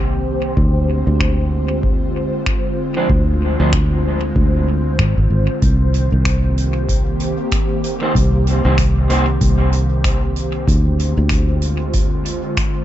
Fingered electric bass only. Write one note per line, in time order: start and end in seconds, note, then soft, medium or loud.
0.00 0.55 C2 medium
0.57 1.04 D2 medium
1.07 2.30 D2 medium
3.09 3.56 D2 medium
3.60 4.33 D2 medium
4.36 4.98 D2 medium
4.99 5.15 G#1 medium
5.18 5.29 G#1 medium
5.30 5.47 G#1 medium
5.62 6.09 C2 medium
6.12 7.35 C2 medium
8.15 8.62 C2 medium
8.65 9.39 C2 medium
9.41 10.65 C2 medium
10.67 11.14 D2 medium
11.17 12.40 D2 medium